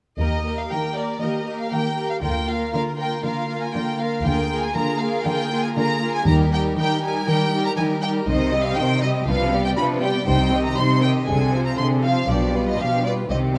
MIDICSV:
0, 0, Header, 1, 6, 480
1, 0, Start_track
1, 0, Key_signature, -3, "major"
1, 0, Tempo, 505902
1, 188, Time_signature, 4, 2, 24, 8
1, 6906, Tempo, 501672
1, 7857, Key_signature, -3, "minor"
1, 12935, End_track
2, 0, Start_track
2, 0, Title_t, "Violin section"
2, 0, Program_c, 0, 48
2, 180, Note_on_c, 0, 75, 48
2, 522, Note_off_c, 0, 75, 0
2, 551, Note_on_c, 0, 77, 40
2, 670, Note_on_c, 0, 79, 44
2, 672, Note_off_c, 0, 77, 0
2, 908, Note_on_c, 0, 74, 43
2, 911, Note_off_c, 0, 79, 0
2, 1149, Note_off_c, 0, 74, 0
2, 1157, Note_on_c, 0, 75, 39
2, 1507, Note_on_c, 0, 77, 41
2, 1514, Note_off_c, 0, 75, 0
2, 1625, Note_on_c, 0, 79, 51
2, 1627, Note_off_c, 0, 77, 0
2, 1991, Note_off_c, 0, 79, 0
2, 1996, Note_on_c, 0, 77, 41
2, 2044, Note_off_c, 0, 77, 0
2, 2114, Note_on_c, 0, 79, 49
2, 2350, Note_off_c, 0, 79, 0
2, 2356, Note_on_c, 0, 77, 43
2, 2583, Note_off_c, 0, 77, 0
2, 2594, Note_on_c, 0, 77, 48
2, 2670, Note_off_c, 0, 77, 0
2, 2834, Note_on_c, 0, 79, 47
2, 3071, Note_off_c, 0, 79, 0
2, 3080, Note_on_c, 0, 77, 49
2, 3432, Note_off_c, 0, 77, 0
2, 3432, Note_on_c, 0, 80, 49
2, 3550, Note_on_c, 0, 79, 47
2, 3555, Note_off_c, 0, 80, 0
2, 3785, Note_on_c, 0, 77, 53
2, 3793, Note_off_c, 0, 79, 0
2, 4026, Note_on_c, 0, 79, 65
2, 4030, Note_off_c, 0, 77, 0
2, 4388, Note_off_c, 0, 79, 0
2, 4389, Note_on_c, 0, 80, 51
2, 4498, Note_on_c, 0, 82, 56
2, 4510, Note_off_c, 0, 80, 0
2, 4738, Note_on_c, 0, 77, 53
2, 4744, Note_off_c, 0, 82, 0
2, 4981, Note_on_c, 0, 79, 64
2, 4983, Note_off_c, 0, 77, 0
2, 5343, Note_off_c, 0, 79, 0
2, 5345, Note_on_c, 0, 80, 47
2, 5394, Note_off_c, 0, 80, 0
2, 5454, Note_on_c, 0, 82, 70
2, 5814, Note_off_c, 0, 82, 0
2, 5832, Note_on_c, 0, 80, 57
2, 5946, Note_on_c, 0, 82, 61
2, 5948, Note_off_c, 0, 80, 0
2, 6022, Note_off_c, 0, 82, 0
2, 6193, Note_on_c, 0, 79, 61
2, 6269, Note_off_c, 0, 79, 0
2, 6431, Note_on_c, 0, 79, 67
2, 6665, Note_off_c, 0, 79, 0
2, 6673, Note_on_c, 0, 80, 60
2, 6903, Note_on_c, 0, 79, 67
2, 6905, Note_off_c, 0, 80, 0
2, 7262, Note_off_c, 0, 79, 0
2, 7264, Note_on_c, 0, 82, 58
2, 7311, Note_off_c, 0, 82, 0
2, 7371, Note_on_c, 0, 80, 62
2, 7448, Note_off_c, 0, 80, 0
2, 7610, Note_on_c, 0, 79, 64
2, 7687, Note_off_c, 0, 79, 0
2, 7849, Note_on_c, 0, 75, 66
2, 8205, Note_off_c, 0, 75, 0
2, 8212, Note_on_c, 0, 77, 64
2, 8328, Note_on_c, 0, 79, 70
2, 8334, Note_off_c, 0, 77, 0
2, 8571, Note_off_c, 0, 79, 0
2, 8573, Note_on_c, 0, 75, 61
2, 8650, Note_off_c, 0, 75, 0
2, 8812, Note_on_c, 0, 77, 64
2, 9162, Note_off_c, 0, 77, 0
2, 9173, Note_on_c, 0, 79, 55
2, 9219, Note_off_c, 0, 79, 0
2, 9285, Note_on_c, 0, 83, 69
2, 9362, Note_off_c, 0, 83, 0
2, 9522, Note_on_c, 0, 79, 58
2, 9752, Note_off_c, 0, 79, 0
2, 9764, Note_on_c, 0, 79, 66
2, 10118, Note_off_c, 0, 79, 0
2, 10125, Note_on_c, 0, 82, 59
2, 10244, Note_off_c, 0, 82, 0
2, 10251, Note_on_c, 0, 84, 64
2, 10487, Note_on_c, 0, 79, 60
2, 10491, Note_off_c, 0, 84, 0
2, 10563, Note_off_c, 0, 79, 0
2, 10717, Note_on_c, 0, 80, 62
2, 11079, Note_off_c, 0, 80, 0
2, 11096, Note_on_c, 0, 82, 51
2, 11210, Note_on_c, 0, 84, 66
2, 11213, Note_off_c, 0, 82, 0
2, 11287, Note_off_c, 0, 84, 0
2, 11450, Note_on_c, 0, 77, 59
2, 11689, Note_off_c, 0, 77, 0
2, 11699, Note_on_c, 0, 74, 55
2, 12060, Note_off_c, 0, 74, 0
2, 12077, Note_on_c, 0, 75, 47
2, 12187, Note_off_c, 0, 75, 0
2, 12188, Note_on_c, 0, 77, 62
2, 12425, Note_on_c, 0, 74, 47
2, 12426, Note_off_c, 0, 77, 0
2, 12501, Note_off_c, 0, 74, 0
2, 12663, Note_on_c, 0, 75, 50
2, 12740, Note_off_c, 0, 75, 0
2, 12935, End_track
3, 0, Start_track
3, 0, Title_t, "Violin section"
3, 0, Program_c, 1, 48
3, 193, Note_on_c, 1, 70, 32
3, 197, Note_off_c, 1, 70, 0
3, 197, Note_on_c, 1, 70, 31
3, 426, Note_off_c, 1, 70, 0
3, 438, Note_on_c, 1, 70, 29
3, 659, Note_off_c, 1, 70, 0
3, 670, Note_on_c, 1, 70, 29
3, 671, Note_off_c, 1, 70, 0
3, 671, Note_on_c, 1, 70, 29
3, 899, Note_off_c, 1, 70, 0
3, 910, Note_on_c, 1, 70, 30
3, 911, Note_off_c, 1, 70, 0
3, 911, Note_on_c, 1, 70, 32
3, 1138, Note_off_c, 1, 70, 0
3, 1149, Note_on_c, 1, 70, 28
3, 1151, Note_off_c, 1, 70, 0
3, 1151, Note_on_c, 1, 70, 30
3, 1377, Note_off_c, 1, 70, 0
3, 1389, Note_on_c, 1, 70, 30
3, 1390, Note_off_c, 1, 70, 0
3, 1390, Note_on_c, 1, 70, 28
3, 1617, Note_off_c, 1, 70, 0
3, 1628, Note_on_c, 1, 70, 29
3, 1631, Note_off_c, 1, 70, 0
3, 1631, Note_on_c, 1, 70, 33
3, 1864, Note_off_c, 1, 70, 0
3, 1876, Note_on_c, 1, 70, 26
3, 1879, Note_off_c, 1, 70, 0
3, 1879, Note_on_c, 1, 70, 25
3, 2106, Note_off_c, 1, 70, 0
3, 2117, Note_on_c, 1, 70, 32
3, 2118, Note_off_c, 1, 70, 0
3, 2118, Note_on_c, 1, 70, 35
3, 2345, Note_off_c, 1, 70, 0
3, 2357, Note_on_c, 1, 70, 28
3, 2362, Note_off_c, 1, 70, 0
3, 2362, Note_on_c, 1, 70, 30
3, 2587, Note_off_c, 1, 70, 0
3, 2598, Note_on_c, 1, 70, 32
3, 2600, Note_off_c, 1, 70, 0
3, 2600, Note_on_c, 1, 70, 36
3, 2819, Note_off_c, 1, 70, 0
3, 2830, Note_on_c, 1, 70, 34
3, 2832, Note_off_c, 1, 70, 0
3, 2832, Note_on_c, 1, 70, 32
3, 3063, Note_off_c, 1, 70, 0
3, 3075, Note_on_c, 1, 70, 34
3, 3302, Note_off_c, 1, 70, 0
3, 3313, Note_on_c, 1, 70, 31
3, 3315, Note_off_c, 1, 70, 0
3, 3315, Note_on_c, 1, 70, 29
3, 3547, Note_off_c, 1, 70, 0
3, 3559, Note_on_c, 1, 70, 38
3, 3562, Note_off_c, 1, 70, 0
3, 3562, Note_on_c, 1, 70, 35
3, 3789, Note_off_c, 1, 70, 0
3, 3800, Note_on_c, 1, 70, 31
3, 3804, Note_off_c, 1, 70, 0
3, 3804, Note_on_c, 1, 70, 29
3, 4028, Note_off_c, 1, 70, 0
3, 4036, Note_on_c, 1, 68, 38
3, 4040, Note_on_c, 1, 70, 34
3, 4256, Note_off_c, 1, 70, 0
3, 4258, Note_off_c, 1, 68, 0
3, 4267, Note_on_c, 1, 70, 36
3, 4269, Note_on_c, 1, 68, 33
3, 4496, Note_off_c, 1, 68, 0
3, 4497, Note_off_c, 1, 70, 0
3, 4507, Note_on_c, 1, 68, 37
3, 4508, Note_on_c, 1, 70, 33
3, 4740, Note_off_c, 1, 68, 0
3, 4741, Note_off_c, 1, 70, 0
3, 4751, Note_on_c, 1, 68, 37
3, 4752, Note_on_c, 1, 70, 42
3, 4976, Note_off_c, 1, 70, 0
3, 4980, Note_off_c, 1, 68, 0
3, 4987, Note_on_c, 1, 70, 39
3, 4992, Note_on_c, 1, 68, 41
3, 5221, Note_off_c, 1, 68, 0
3, 5222, Note_off_c, 1, 70, 0
3, 5232, Note_on_c, 1, 68, 36
3, 5235, Note_on_c, 1, 70, 40
3, 5459, Note_off_c, 1, 68, 0
3, 5461, Note_off_c, 1, 70, 0
3, 5470, Note_on_c, 1, 68, 44
3, 5472, Note_on_c, 1, 70, 41
3, 5694, Note_off_c, 1, 70, 0
3, 5698, Note_off_c, 1, 68, 0
3, 5706, Note_on_c, 1, 70, 35
3, 5709, Note_on_c, 1, 68, 39
3, 5927, Note_off_c, 1, 70, 0
3, 5936, Note_on_c, 1, 67, 46
3, 5938, Note_on_c, 1, 70, 42
3, 5945, Note_off_c, 1, 68, 0
3, 6178, Note_off_c, 1, 67, 0
3, 6179, Note_off_c, 1, 70, 0
3, 6188, Note_on_c, 1, 67, 38
3, 6189, Note_on_c, 1, 70, 39
3, 6418, Note_off_c, 1, 70, 0
3, 6419, Note_off_c, 1, 67, 0
3, 6429, Note_on_c, 1, 70, 41
3, 6430, Note_on_c, 1, 67, 39
3, 6656, Note_off_c, 1, 67, 0
3, 6656, Note_off_c, 1, 70, 0
3, 6667, Note_on_c, 1, 67, 43
3, 6668, Note_on_c, 1, 70, 46
3, 6893, Note_off_c, 1, 70, 0
3, 6897, Note_off_c, 1, 67, 0
3, 6905, Note_on_c, 1, 70, 46
3, 6909, Note_on_c, 1, 67, 42
3, 7137, Note_off_c, 1, 70, 0
3, 7140, Note_off_c, 1, 67, 0
3, 7148, Note_on_c, 1, 70, 44
3, 7151, Note_on_c, 1, 67, 43
3, 7373, Note_off_c, 1, 70, 0
3, 7377, Note_off_c, 1, 67, 0
3, 7385, Note_on_c, 1, 70, 48
3, 7388, Note_on_c, 1, 67, 45
3, 7616, Note_off_c, 1, 70, 0
3, 7617, Note_off_c, 1, 67, 0
3, 7629, Note_on_c, 1, 70, 38
3, 7630, Note_on_c, 1, 67, 41
3, 7858, Note_off_c, 1, 67, 0
3, 7858, Note_off_c, 1, 70, 0
3, 7870, Note_on_c, 1, 63, 42
3, 7870, Note_on_c, 1, 72, 47
3, 8087, Note_off_c, 1, 63, 0
3, 8087, Note_off_c, 1, 72, 0
3, 8102, Note_on_c, 1, 67, 41
3, 8104, Note_on_c, 1, 75, 41
3, 8338, Note_off_c, 1, 67, 0
3, 8340, Note_off_c, 1, 75, 0
3, 8346, Note_on_c, 1, 63, 41
3, 8349, Note_on_c, 1, 72, 45
3, 8580, Note_off_c, 1, 63, 0
3, 8581, Note_off_c, 1, 72, 0
3, 8582, Note_on_c, 1, 75, 44
3, 8586, Note_on_c, 1, 67, 40
3, 8817, Note_off_c, 1, 75, 0
3, 8819, Note_off_c, 1, 67, 0
3, 8824, Note_on_c, 1, 65, 45
3, 8824, Note_on_c, 1, 71, 43
3, 9040, Note_off_c, 1, 65, 0
3, 9040, Note_off_c, 1, 71, 0
3, 9059, Note_on_c, 1, 67, 40
3, 9059, Note_on_c, 1, 74, 42
3, 9292, Note_off_c, 1, 67, 0
3, 9292, Note_off_c, 1, 74, 0
3, 9297, Note_on_c, 1, 65, 46
3, 9300, Note_on_c, 1, 71, 43
3, 9531, Note_off_c, 1, 65, 0
3, 9533, Note_off_c, 1, 71, 0
3, 9534, Note_on_c, 1, 67, 39
3, 9540, Note_on_c, 1, 74, 42
3, 9763, Note_on_c, 1, 63, 46
3, 9765, Note_on_c, 1, 72, 45
3, 9770, Note_off_c, 1, 67, 0
3, 9773, Note_off_c, 1, 74, 0
3, 9988, Note_off_c, 1, 63, 0
3, 9989, Note_off_c, 1, 72, 0
3, 10007, Note_on_c, 1, 67, 39
3, 10007, Note_on_c, 1, 75, 40
3, 10246, Note_on_c, 1, 63, 40
3, 10247, Note_off_c, 1, 67, 0
3, 10248, Note_off_c, 1, 75, 0
3, 10250, Note_on_c, 1, 72, 41
3, 10488, Note_off_c, 1, 63, 0
3, 10490, Note_off_c, 1, 72, 0
3, 10496, Note_on_c, 1, 67, 45
3, 10498, Note_on_c, 1, 75, 40
3, 10733, Note_on_c, 1, 60, 42
3, 10734, Note_off_c, 1, 67, 0
3, 10734, Note_on_c, 1, 68, 38
3, 10735, Note_off_c, 1, 75, 0
3, 10957, Note_off_c, 1, 60, 0
3, 10957, Note_off_c, 1, 68, 0
3, 10974, Note_on_c, 1, 72, 39
3, 10979, Note_on_c, 1, 65, 42
3, 11215, Note_off_c, 1, 72, 0
3, 11218, Note_off_c, 1, 65, 0
3, 11220, Note_on_c, 1, 68, 41
3, 11222, Note_on_c, 1, 60, 41
3, 11459, Note_off_c, 1, 68, 0
3, 11460, Note_off_c, 1, 60, 0
3, 11470, Note_on_c, 1, 65, 35
3, 11470, Note_on_c, 1, 72, 35
3, 11704, Note_off_c, 1, 65, 0
3, 11704, Note_off_c, 1, 72, 0
3, 11707, Note_on_c, 1, 67, 40
3, 11709, Note_off_c, 1, 67, 0
3, 11709, Note_on_c, 1, 67, 40
3, 11928, Note_off_c, 1, 67, 0
3, 11946, Note_on_c, 1, 71, 37
3, 11950, Note_on_c, 1, 65, 36
3, 12185, Note_off_c, 1, 71, 0
3, 12186, Note_off_c, 1, 65, 0
3, 12188, Note_on_c, 1, 67, 36
3, 12191, Note_off_c, 1, 67, 0
3, 12191, Note_on_c, 1, 67, 37
3, 12427, Note_off_c, 1, 67, 0
3, 12429, Note_on_c, 1, 71, 35
3, 12431, Note_on_c, 1, 65, 33
3, 12666, Note_off_c, 1, 71, 0
3, 12667, Note_off_c, 1, 65, 0
3, 12673, Note_on_c, 1, 67, 31
3, 12675, Note_on_c, 1, 60, 32
3, 12894, Note_off_c, 1, 67, 0
3, 12895, Note_off_c, 1, 60, 0
3, 12906, Note_on_c, 1, 63, 31
3, 12935, Note_off_c, 1, 63, 0
3, 12935, End_track
4, 0, Start_track
4, 0, Title_t, "Viola section"
4, 0, Program_c, 2, 48
4, 193, Note_on_c, 2, 58, 32
4, 193, Note_on_c, 2, 67, 35
4, 422, Note_off_c, 2, 58, 0
4, 422, Note_off_c, 2, 67, 0
4, 433, Note_on_c, 2, 58, 28
4, 434, Note_on_c, 2, 67, 30
4, 666, Note_off_c, 2, 67, 0
4, 669, Note_off_c, 2, 58, 0
4, 677, Note_on_c, 2, 67, 28
4, 679, Note_on_c, 2, 58, 28
4, 899, Note_off_c, 2, 58, 0
4, 901, Note_off_c, 2, 67, 0
4, 910, Note_on_c, 2, 58, 28
4, 912, Note_on_c, 2, 67, 27
4, 1138, Note_off_c, 2, 67, 0
4, 1139, Note_off_c, 2, 58, 0
4, 1150, Note_on_c, 2, 58, 34
4, 1150, Note_on_c, 2, 67, 32
4, 1385, Note_off_c, 2, 67, 0
4, 1386, Note_off_c, 2, 58, 0
4, 1396, Note_on_c, 2, 58, 28
4, 1396, Note_on_c, 2, 67, 30
4, 1630, Note_off_c, 2, 58, 0
4, 1630, Note_off_c, 2, 67, 0
4, 1639, Note_on_c, 2, 67, 31
4, 1640, Note_on_c, 2, 58, 31
4, 1863, Note_off_c, 2, 58, 0
4, 1864, Note_off_c, 2, 67, 0
4, 1874, Note_on_c, 2, 58, 28
4, 1875, Note_on_c, 2, 67, 32
4, 2104, Note_off_c, 2, 58, 0
4, 2111, Note_off_c, 2, 67, 0
4, 2115, Note_on_c, 2, 58, 35
4, 2116, Note_on_c, 2, 65, 33
4, 2342, Note_off_c, 2, 58, 0
4, 2343, Note_off_c, 2, 65, 0
4, 2354, Note_on_c, 2, 58, 31
4, 2355, Note_on_c, 2, 65, 28
4, 2585, Note_off_c, 2, 65, 0
4, 2588, Note_off_c, 2, 58, 0
4, 2597, Note_on_c, 2, 65, 30
4, 2599, Note_on_c, 2, 58, 33
4, 2821, Note_off_c, 2, 58, 0
4, 2822, Note_off_c, 2, 65, 0
4, 2832, Note_on_c, 2, 58, 30
4, 2833, Note_on_c, 2, 65, 30
4, 3062, Note_off_c, 2, 58, 0
4, 3064, Note_off_c, 2, 65, 0
4, 3074, Note_on_c, 2, 58, 36
4, 3075, Note_on_c, 2, 65, 36
4, 3306, Note_off_c, 2, 58, 0
4, 3306, Note_off_c, 2, 65, 0
4, 3317, Note_on_c, 2, 58, 33
4, 3317, Note_on_c, 2, 65, 36
4, 3543, Note_off_c, 2, 65, 0
4, 3545, Note_off_c, 2, 58, 0
4, 3554, Note_on_c, 2, 65, 33
4, 3557, Note_on_c, 2, 58, 36
4, 3783, Note_off_c, 2, 65, 0
4, 3785, Note_off_c, 2, 58, 0
4, 3794, Note_on_c, 2, 65, 31
4, 3797, Note_on_c, 2, 58, 29
4, 4024, Note_off_c, 2, 58, 0
4, 4024, Note_off_c, 2, 65, 0
4, 4036, Note_on_c, 2, 58, 38
4, 4036, Note_on_c, 2, 65, 35
4, 4263, Note_off_c, 2, 65, 0
4, 4266, Note_off_c, 2, 58, 0
4, 4274, Note_on_c, 2, 65, 32
4, 4277, Note_on_c, 2, 58, 37
4, 4500, Note_off_c, 2, 65, 0
4, 4501, Note_off_c, 2, 58, 0
4, 4512, Note_on_c, 2, 65, 35
4, 4513, Note_on_c, 2, 58, 37
4, 4743, Note_off_c, 2, 58, 0
4, 4743, Note_off_c, 2, 65, 0
4, 4754, Note_on_c, 2, 65, 33
4, 4755, Note_on_c, 2, 58, 34
4, 4978, Note_off_c, 2, 58, 0
4, 4978, Note_off_c, 2, 65, 0
4, 4989, Note_on_c, 2, 65, 42
4, 4990, Note_on_c, 2, 58, 39
4, 5217, Note_off_c, 2, 58, 0
4, 5219, Note_off_c, 2, 65, 0
4, 5228, Note_on_c, 2, 58, 34
4, 5231, Note_on_c, 2, 65, 37
4, 5456, Note_off_c, 2, 65, 0
4, 5457, Note_off_c, 2, 58, 0
4, 5467, Note_on_c, 2, 65, 42
4, 5468, Note_on_c, 2, 58, 41
4, 5700, Note_off_c, 2, 58, 0
4, 5700, Note_off_c, 2, 65, 0
4, 5711, Note_on_c, 2, 58, 35
4, 5711, Note_on_c, 2, 65, 40
4, 5945, Note_off_c, 2, 65, 0
4, 5946, Note_off_c, 2, 58, 0
4, 5948, Note_on_c, 2, 55, 43
4, 5950, Note_on_c, 2, 63, 40
4, 6174, Note_off_c, 2, 55, 0
4, 6174, Note_off_c, 2, 63, 0
4, 6185, Note_on_c, 2, 55, 43
4, 6185, Note_on_c, 2, 63, 43
4, 6412, Note_off_c, 2, 63, 0
4, 6413, Note_off_c, 2, 55, 0
4, 6424, Note_on_c, 2, 55, 40
4, 6424, Note_on_c, 2, 63, 40
4, 6654, Note_off_c, 2, 55, 0
4, 6654, Note_off_c, 2, 63, 0
4, 6666, Note_on_c, 2, 55, 38
4, 6666, Note_on_c, 2, 63, 38
4, 6892, Note_off_c, 2, 55, 0
4, 6892, Note_off_c, 2, 63, 0
4, 6903, Note_on_c, 2, 55, 46
4, 6903, Note_on_c, 2, 63, 42
4, 7130, Note_off_c, 2, 55, 0
4, 7132, Note_off_c, 2, 63, 0
4, 7141, Note_on_c, 2, 55, 42
4, 7143, Note_on_c, 2, 63, 41
4, 7365, Note_off_c, 2, 55, 0
4, 7365, Note_off_c, 2, 63, 0
4, 7377, Note_on_c, 2, 55, 44
4, 7377, Note_on_c, 2, 63, 43
4, 7600, Note_off_c, 2, 55, 0
4, 7603, Note_off_c, 2, 63, 0
4, 7612, Note_on_c, 2, 55, 44
4, 7615, Note_on_c, 2, 63, 37
4, 7841, Note_off_c, 2, 63, 0
4, 7849, Note_off_c, 2, 55, 0
4, 7852, Note_on_c, 2, 51, 43
4, 7852, Note_on_c, 2, 63, 43
4, 8077, Note_off_c, 2, 51, 0
4, 8077, Note_off_c, 2, 63, 0
4, 8096, Note_on_c, 2, 55, 44
4, 8098, Note_on_c, 2, 60, 42
4, 8330, Note_on_c, 2, 63, 44
4, 8332, Note_on_c, 2, 51, 45
4, 8336, Note_off_c, 2, 55, 0
4, 8337, Note_off_c, 2, 60, 0
4, 8572, Note_off_c, 2, 63, 0
4, 8573, Note_off_c, 2, 51, 0
4, 8574, Note_on_c, 2, 55, 40
4, 8574, Note_on_c, 2, 60, 39
4, 8808, Note_on_c, 2, 53, 41
4, 8810, Note_on_c, 2, 62, 45
4, 8813, Note_off_c, 2, 55, 0
4, 8813, Note_off_c, 2, 60, 0
4, 9032, Note_off_c, 2, 53, 0
4, 9033, Note_off_c, 2, 62, 0
4, 9046, Note_on_c, 2, 55, 46
4, 9047, Note_on_c, 2, 59, 44
4, 9282, Note_on_c, 2, 62, 46
4, 9283, Note_on_c, 2, 53, 40
4, 9286, Note_off_c, 2, 55, 0
4, 9286, Note_off_c, 2, 59, 0
4, 9522, Note_on_c, 2, 59, 43
4, 9524, Note_off_c, 2, 53, 0
4, 9524, Note_off_c, 2, 62, 0
4, 9525, Note_on_c, 2, 55, 41
4, 9751, Note_off_c, 2, 55, 0
4, 9762, Note_on_c, 2, 63, 45
4, 9763, Note_on_c, 2, 55, 47
4, 9764, Note_off_c, 2, 59, 0
4, 9987, Note_off_c, 2, 63, 0
4, 9988, Note_off_c, 2, 55, 0
4, 10001, Note_on_c, 2, 60, 42
4, 10002, Note_on_c, 2, 51, 42
4, 10241, Note_on_c, 2, 63, 36
4, 10242, Note_on_c, 2, 55, 40
4, 10245, Note_off_c, 2, 51, 0
4, 10245, Note_off_c, 2, 60, 0
4, 10480, Note_on_c, 2, 60, 34
4, 10481, Note_on_c, 2, 51, 40
4, 10485, Note_off_c, 2, 63, 0
4, 10486, Note_off_c, 2, 55, 0
4, 10726, Note_off_c, 2, 60, 0
4, 10727, Note_off_c, 2, 51, 0
4, 10731, Note_on_c, 2, 50, 44
4, 10731, Note_on_c, 2, 62, 43
4, 10956, Note_off_c, 2, 50, 0
4, 10956, Note_off_c, 2, 62, 0
4, 10969, Note_on_c, 2, 60, 40
4, 10971, Note_on_c, 2, 53, 39
4, 11206, Note_on_c, 2, 62, 42
4, 11207, Note_on_c, 2, 50, 38
4, 11213, Note_off_c, 2, 60, 0
4, 11214, Note_off_c, 2, 53, 0
4, 11452, Note_off_c, 2, 50, 0
4, 11452, Note_off_c, 2, 62, 0
4, 11455, Note_on_c, 2, 60, 36
4, 11456, Note_on_c, 2, 53, 39
4, 11688, Note_off_c, 2, 53, 0
4, 11695, Note_on_c, 2, 62, 36
4, 11696, Note_off_c, 2, 60, 0
4, 11699, Note_on_c, 2, 53, 37
4, 11921, Note_off_c, 2, 62, 0
4, 11922, Note_off_c, 2, 53, 0
4, 11936, Note_on_c, 2, 55, 38
4, 11937, Note_on_c, 2, 59, 37
4, 12173, Note_on_c, 2, 53, 33
4, 12176, Note_on_c, 2, 62, 34
4, 12179, Note_off_c, 2, 55, 0
4, 12180, Note_off_c, 2, 59, 0
4, 12414, Note_on_c, 2, 55, 32
4, 12414, Note_on_c, 2, 59, 32
4, 12418, Note_off_c, 2, 53, 0
4, 12420, Note_off_c, 2, 62, 0
4, 12656, Note_on_c, 2, 51, 35
4, 12657, Note_on_c, 2, 60, 34
4, 12659, Note_off_c, 2, 55, 0
4, 12659, Note_off_c, 2, 59, 0
4, 12885, Note_off_c, 2, 51, 0
4, 12885, Note_off_c, 2, 60, 0
4, 12898, Note_on_c, 2, 63, 32
4, 12899, Note_on_c, 2, 55, 31
4, 12935, Note_off_c, 2, 55, 0
4, 12935, Note_off_c, 2, 63, 0
4, 12935, End_track
5, 0, Start_track
5, 0, Title_t, "Cello section"
5, 0, Program_c, 3, 48
5, 189, Note_on_c, 3, 51, 33
5, 594, Note_off_c, 3, 51, 0
5, 668, Note_on_c, 3, 51, 36
5, 1071, Note_off_c, 3, 51, 0
5, 1153, Note_on_c, 3, 51, 39
5, 1554, Note_off_c, 3, 51, 0
5, 1632, Note_on_c, 3, 51, 38
5, 2037, Note_off_c, 3, 51, 0
5, 2116, Note_on_c, 3, 50, 40
5, 2518, Note_off_c, 3, 50, 0
5, 2596, Note_on_c, 3, 50, 44
5, 2998, Note_off_c, 3, 50, 0
5, 3076, Note_on_c, 3, 50, 43
5, 3479, Note_off_c, 3, 50, 0
5, 3558, Note_on_c, 3, 50, 42
5, 3958, Note_off_c, 3, 50, 0
5, 4036, Note_on_c, 3, 50, 42
5, 4435, Note_off_c, 3, 50, 0
5, 4511, Note_on_c, 3, 50, 48
5, 4911, Note_off_c, 3, 50, 0
5, 4989, Note_on_c, 3, 50, 48
5, 5389, Note_off_c, 3, 50, 0
5, 5466, Note_on_c, 3, 50, 48
5, 5869, Note_off_c, 3, 50, 0
5, 5942, Note_on_c, 3, 51, 48
5, 6347, Note_off_c, 3, 51, 0
5, 6423, Note_on_c, 3, 51, 54
5, 6826, Note_off_c, 3, 51, 0
5, 6908, Note_on_c, 3, 51, 59
5, 7306, Note_off_c, 3, 51, 0
5, 7380, Note_on_c, 3, 51, 52
5, 7779, Note_off_c, 3, 51, 0
5, 7858, Note_on_c, 3, 48, 50
5, 8280, Note_off_c, 3, 48, 0
5, 8333, Note_on_c, 3, 48, 55
5, 8756, Note_off_c, 3, 48, 0
5, 8813, Note_on_c, 3, 48, 55
5, 9232, Note_off_c, 3, 48, 0
5, 9288, Note_on_c, 3, 48, 54
5, 9709, Note_off_c, 3, 48, 0
5, 9767, Note_on_c, 3, 48, 49
5, 10191, Note_off_c, 3, 48, 0
5, 10251, Note_on_c, 3, 48, 53
5, 10675, Note_off_c, 3, 48, 0
5, 10736, Note_on_c, 3, 48, 55
5, 11160, Note_off_c, 3, 48, 0
5, 11220, Note_on_c, 3, 48, 48
5, 11643, Note_off_c, 3, 48, 0
5, 11696, Note_on_c, 3, 47, 46
5, 12123, Note_off_c, 3, 47, 0
5, 12186, Note_on_c, 3, 47, 44
5, 12609, Note_off_c, 3, 47, 0
5, 12664, Note_on_c, 3, 48, 38
5, 12935, Note_off_c, 3, 48, 0
5, 12935, End_track
6, 0, Start_track
6, 0, Title_t, "Double bass section"
6, 0, Program_c, 4, 48
6, 184, Note_on_c, 4, 39, 41
6, 591, Note_off_c, 4, 39, 0
6, 2114, Note_on_c, 4, 38, 40
6, 2517, Note_off_c, 4, 38, 0
6, 4032, Note_on_c, 4, 38, 48
6, 4432, Note_off_c, 4, 38, 0
6, 5943, Note_on_c, 4, 39, 55
6, 6348, Note_off_c, 4, 39, 0
6, 7857, Note_on_c, 4, 36, 55
6, 8258, Note_off_c, 4, 36, 0
6, 8814, Note_on_c, 4, 36, 52
6, 9211, Note_off_c, 4, 36, 0
6, 9773, Note_on_c, 4, 36, 58
6, 10172, Note_off_c, 4, 36, 0
6, 10735, Note_on_c, 4, 36, 52
6, 11138, Note_off_c, 4, 36, 0
6, 11698, Note_on_c, 4, 35, 49
6, 12102, Note_off_c, 4, 35, 0
6, 12662, Note_on_c, 4, 36, 42
6, 12935, Note_off_c, 4, 36, 0
6, 12935, End_track
0, 0, End_of_file